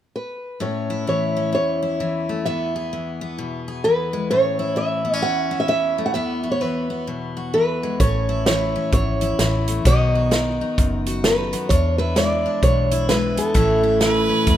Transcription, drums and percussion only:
8.00 kick, closed hi-hat
8.46 snare, closed hi-hat
8.92 kick, closed hi-hat
9.21 closed hi-hat
9.39 snare, closed hi-hat
9.68 closed hi-hat
9.85 kick, closed hi-hat
10.32 snare, closed hi-hat
10.78 kick, closed hi-hat
11.06 closed hi-hat
11.24 snare, closed hi-hat
11.53 closed hi-hat
11.70 kick, closed hi-hat
12.16 snare, closed hi-hat
12.63 kick, closed hi-hat
12.91 closed hi-hat
13.09 snare, closed hi-hat
13.37 closed hi-hat
13.55 kick, closed hi-hat
14.01 snare, closed hi-hat
14.47 kick, closed hi-hat

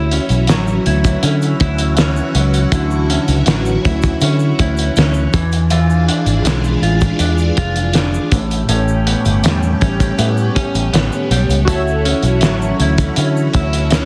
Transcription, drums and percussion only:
0.11 closed hi-hat
0.29 closed hi-hat, shaker
0.47 snare, closed hi-hat, shaker
0.67 shaker
0.86 closed hi-hat
1.04 kick, closed hi-hat, shaker
1.23 closed hi-hat, shaker
1.42 closed hi-hat, shaker
1.60 kick, closed hi-hat
1.78 closed hi-hat, shaker
1.97 snare, closed hi-hat, shaker
2.16 shaker
2.35 closed hi-hat, shaker
2.54 closed hi-hat, shaker
2.72 kick, closed hi-hat, shaker
2.91 shaker
3.10 closed hi-hat
3.28 closed hi-hat, shaker
3.46 snare, closed hi-hat, shaker
3.66 shaker
3.85 kick, closed hi-hat
4.02 kick, closed hi-hat, shaker
4.21 closed hi-hat, shaker
4.39 shaker
4.59 kick, closed hi-hat
4.77 closed hi-hat, shaker
4.96 snare, closed hi-hat, shaker
5.14 shaker
5.33 kick, closed hi-hat, shaker
5.52 closed hi-hat, shaker
5.70 closed hi-hat, shaker
5.90 shaker
6.09 closed hi-hat
6.26 closed hi-hat, shaker
6.45 snare, closed hi-hat, shaker
6.64 shaker
6.83 closed hi-hat
7.01 kick, closed hi-hat, shaker
7.19 closed hi-hat, shaker
7.38 shaker
7.57 kick, closed hi-hat
7.76 closed hi-hat, shaker
7.93 snare, closed hi-hat, shaker
8.14 shaker
8.32 kick, closed hi-hat, shaker
8.51 closed hi-hat, shaker
8.69 closed hi-hat, shaker
8.88 shaker
9.07 closed hi-hat
9.25 closed hi-hat, shaker
9.44 snare, closed hi-hat, shaker
9.63 shaker
9.81 kick, closed hi-hat
10.00 kick, closed hi-hat, shaker
10.19 closed hi-hat, shaker
10.37 shaker
10.56 kick, closed hi-hat
10.75 closed hi-hat, shaker
10.94 snare, closed hi-hat, shaker
11.12 shaker
11.31 closed hi-hat, shaker
11.50 closed hi-hat, shaker
11.68 kick, closed hi-hat, shaker
11.88 shaker
12.05 closed hi-hat
12.23 closed hi-hat, shaker
12.41 snare, closed hi-hat, shaker
12.62 shaker
12.80 closed hi-hat
12.98 kick, closed hi-hat, shaker
13.16 closed hi-hat, shaker
13.37 shaker
13.53 kick, closed hi-hat
13.73 closed hi-hat, shaker
13.90 snare, closed hi-hat, shaker

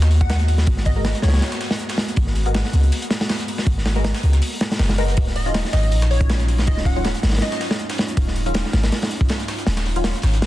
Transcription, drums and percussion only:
0.02 snare, closed hi-hat
0.11 closed hi-hat, open hi-hat
0.21 kick, closed hi-hat
0.30 snare, closed hi-hat, open hi-hat
0.39 snare, closed hi-hat
0.48 closed hi-hat, open hi-hat
0.58 snare
0.67 kick, closed hi-hat, open hi-hat
0.77 snare
0.85 kick, closed hi-hat, open hi-hat
1.05 snare, closed hi-hat, open hi-hat
1.15 closed hi-hat
1.22 snare, closed hi-hat, open hi-hat
1.28 snare, open hi-hat
1.34 snare, open hi-hat
1.37 snare, open hi-hat
1.41 snare, closed hi-hat, open hi-hat
1.52 snare, closed hi-hat
1.61 snare, closed hi-hat, open hi-hat
1.71 snare, open hi-hat
1.79 closed hi-hat
1.89 snare, closed hi-hat, open hi-hat
1.98 snare, open hi-hat
2.08 closed hi-hat
2.16 kick, closed hi-hat, open hi-hat
2.27 snare
2.35 closed hi-hat, open hi-hat
2.46 closed hi-hat
2.54 snare, closed hi-hat, open hi-hat
2.64 snare
2.73 closed hi-hat, open hi-hat
2.83 closed hi-hat
2.92 closed hi-hat, open hi-hat
3.02 closed hi-hat
3.10 snare, closed hi-hat, open hi-hat
3.21 snare, open hi-hat
3.29 snare, closed hi-hat, open hi-hat
3.40 snare, closed hi-hat
3.48 closed hi-hat, open hi-hat
3.58 snare
3.67 kick, closed hi-hat, open hi-hat
3.78 snare
3.86 snare, open hi-hat
3.96 closed hi-hat
4.04 snare, closed hi-hat, open hi-hat
4.14 snare, closed hi-hat, open hi-hat
4.23 closed hi-hat, open hi-hat
4.33 snare, closed hi-hat
4.42 closed hi-hat, open hi-hat
4.61 snare, closed hi-hat, open hi-hat
4.72 snare, open hi-hat
4.79 snare, open hi-hat
4.89 snare, closed hi-hat, open hi-hat
4.98 snare, closed hi-hat, open hi-hat
5.08 snare, closed hi-hat
5.17 kick, closed hi-hat, open hi-hat
5.27 snare
5.36 closed hi-hat, open hi-hat
5.47 closed hi-hat
5.54 snare, closed hi-hat, open hi-hat
5.65 snare
5.73 snare, closed hi-hat, open hi-hat
5.83 closed hi-hat
5.92 closed hi-hat, open hi-hat
6.02 snare, closed hi-hat
6.11 closed hi-hat, open hi-hat
6.21 kick, closed hi-hat
6.30 snare, closed hi-hat, open hi-hat
6.39 snare, closed hi-hat
6.48 closed hi-hat, open hi-hat
6.58 snare
6.67 kick, closed hi-hat, open hi-hat
6.77 snare
6.85 kick, closed hi-hat, open hi-hat
7.05 snare, closed hi-hat, open hi-hat
7.15 closed hi-hat
7.23 snare, closed hi-hat, open hi-hat
7.29 snare, open hi-hat
7.33 snare, open hi-hat
7.37 snare, open hi-hat
7.42 snare, closed hi-hat, open hi-hat
7.52 snare, closed hi-hat
7.61 snare, closed hi-hat, open hi-hat
7.71 snare, open hi-hat
7.79 closed hi-hat
7.89 snare, closed hi-hat, open hi-hat
7.98 snare, open hi-hat
8.08 closed hi-hat
8.17 kick, closed hi-hat, open hi-hat
8.27 snare
8.35 closed hi-hat, open hi-hat
8.46 closed hi-hat
8.54 snare, closed hi-hat, open hi-hat
8.65 snare
8.73 snare, closed hi-hat, open hi-hat
8.83 snare, closed hi-hat, open hi-hat
8.92 snare, closed hi-hat, open hi-hat
9.02 snare, closed hi-hat, open hi-hat
9.11 closed hi-hat, open hi-hat
9.21 kick
9.29 snare, closed hi-hat, open hi-hat
9.40 snare, closed hi-hat
9.48 snare, closed hi-hat, open hi-hat
9.58 snare, closed hi-hat
9.67 snare, closed hi-hat, open hi-hat
9.77 snare, closed hi-hat
9.86 snare, open hi-hat
9.96 closed hi-hat
10.04 snare, closed hi-hat, open hi-hat
10.15 snare, closed hi-hat
10.22 snare, closed hi-hat, open hi-hat
10.33 snare, closed hi-hat
10.42 snare, closed hi-hat, open hi-hat

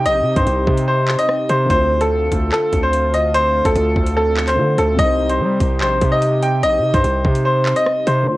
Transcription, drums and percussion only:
0.06 closed hi-hat
0.36 kick, closed hi-hat
0.47 closed hi-hat
0.67 kick
0.78 closed hi-hat
1.08 clap
1.19 closed hi-hat
1.29 cross-stick
1.49 closed hi-hat
1.70 kick, closed hi-hat
2.01 closed hi-hat
2.32 kick, closed hi-hat
2.52 clap
2.73 kick, closed hi-hat
2.93 closed hi-hat
3.14 closed hi-hat
3.34 closed hi-hat
3.65 kick, closed hi-hat
3.75 closed hi-hat
3.96 kick
4.06 closed hi-hat
4.37 clap
4.47 clap, closed hi-hat
4.78 closed hi-hat
4.99 kick, closed hi-hat
5.29 closed hi-hat
5.60 kick, closed hi-hat
5.81 clap
6.01 kick, closed hi-hat
6.22 closed hi-hat
6.42 closed hi-hat
6.63 closed hi-hat
6.94 kick, closed hi-hat
7.04 closed hi-hat
7.25 kick
7.35 closed hi-hat
7.66 clap
7.76 closed hi-hat
7.86 cross-stick
8.07 closed hi-hat

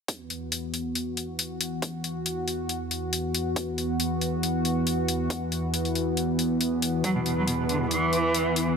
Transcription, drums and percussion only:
0.08 kick, closed hi-hat
0.30 closed hi-hat
0.52 closed hi-hat
0.74 closed hi-hat
0.95 closed hi-hat
1.17 closed hi-hat
1.39 closed hi-hat
1.61 closed hi-hat
1.82 kick, closed hi-hat
2.04 closed hi-hat
2.26 closed hi-hat
2.48 closed hi-hat
2.69 closed hi-hat
2.91 closed hi-hat
3.13 closed hi-hat
3.35 closed hi-hat
3.56 kick, closed hi-hat
3.78 closed hi-hat
4.00 closed hi-hat
4.21 closed hi-hat
4.43 closed hi-hat
4.65 closed hi-hat
4.87 closed hi-hat
5.08 closed hi-hat
5.30 kick, closed hi-hat
5.52 closed hi-hat
5.74 closed hi-hat
5.85 closed hi-hat
5.95 closed hi-hat
6.17 closed hi-hat
6.39 closed hi-hat
6.61 closed hi-hat
6.82 closed hi-hat
7.04 kick, closed hi-hat
7.26 closed hi-hat
7.48 closed hi-hat
7.69 closed hi-hat
7.91 closed hi-hat
8.13 closed hi-hat
8.34 closed hi-hat
8.56 closed hi-hat

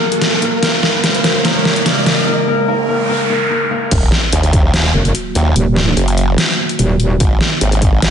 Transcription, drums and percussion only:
0.12 closed hi-hat
0.22 snare, closed hi-hat
0.42 closed hi-hat
0.63 snare, closed hi-hat
0.83 snare
1.04 snare, closed hi-hat
1.15 closed hi-hat
1.24 snare, closed hi-hat
1.45 snare, closed hi-hat
1.65 snare
1.76 closed hi-hat
1.86 snare, closed hi-hat
2.06 snare, closed hi-hat
3.91 kick, closed hi-hat, crash
4.12 snare
4.33 closed hi-hat
4.43 closed hi-hat
4.53 kick, closed hi-hat
4.74 snare, closed hi-hat
5.05 closed hi-hat
5.15 closed hi-hat
5.35 open hi-hat
5.56 closed hi-hat
5.76 snare
5.97 closed hi-hat
6.08 closed hi-hat
6.18 closed hi-hat
6.38 snare, closed hi-hat
6.69 closed hi-hat
6.79 closed hi-hat
7.00 open hi-hat
7.20 kick, closed hi-hat
7.41 snare
7.61 closed hi-hat
7.72 closed hi-hat
7.82 kick, closed hi-hat
8.02 snare, closed hi-hat

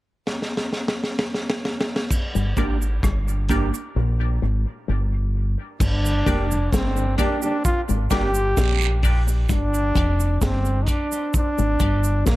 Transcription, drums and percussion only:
0.27 snare
0.42 snare
0.57 snare
0.73 snare
0.88 snare
1.04 snare
1.19 snare
1.34 snare
1.50 snare
1.65 snare
1.81 snare
1.96 snare
2.10 kick, crash, cabasa
2.36 cabasa
2.57 kick, closed hi-hat, cabasa
2.82 cabasa
3.03 kick, cross-stick, cabasa
3.28 cabasa
3.49 kick, closed hi-hat, cabasa
3.74 cabasa
5.80 kick, crash, cabasa
6.05 cabasa
6.26 kick, closed hi-hat, cabasa
6.51 cabasa
6.73 kick, snare, cabasa
6.97 cabasa
7.18 kick, closed hi-hat, cabasa
7.42 cabasa
7.65 kick, cabasa
7.89 cabasa
8.10 kick, snare, closed hi-hat, cabasa
8.34 cabasa
8.57 kick, snare, cabasa, long guiro
8.82 cabasa
9.03 kick, open hi-hat, cabasa
9.28 cabasa
9.49 kick, hi-hat pedal, cabasa
9.74 cabasa
9.96 kick, closed hi-hat, cabasa
10.20 cabasa
10.41 kick, snare, cabasa
10.65 cabasa
10.87 kick, closed hi-hat, cabasa
11.12 cabasa
11.34 kick, cabasa
11.58 cabasa
11.80 kick, closed hi-hat, cabasa
12.04 cabasa
12.27 kick, snare, cabasa, long guiro

